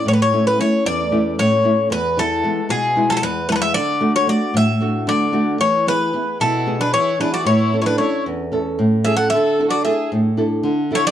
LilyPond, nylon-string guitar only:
\new Staff \with { instrumentName = "Nylon-string guitar" } { \time 7/8 \key a \major \tempo 4 = 113 a,8 <a cis' e'>8 <a cis' e'>8 e,8 <a cis' e'>8 a,8 <a cis' e'>8 | e,8 <e b e'>8 <gis b e'>8 b,8 <gis b e'>8 e,8 <gis b e'>8 | d8 <a d' fis'>8 <a d' fis'>8 a,8 <a d' fis'>8 d8 <a d' fis'>8 | e8 <b e' gis'>8 <b e' gis'>8 b,8 <b e' gis'>8 e8 <b e' gis'>8 |
a,8 <cis' e' a'>8 <cis' e' a'>8 e,8 <cis' e' a'>8 a,8 <cis' e' a'>8 | d8 <d' e' a'>8 <d' e' a'>8 a,8 <d' e' a'>8 d8 <d' e' a'>8 | }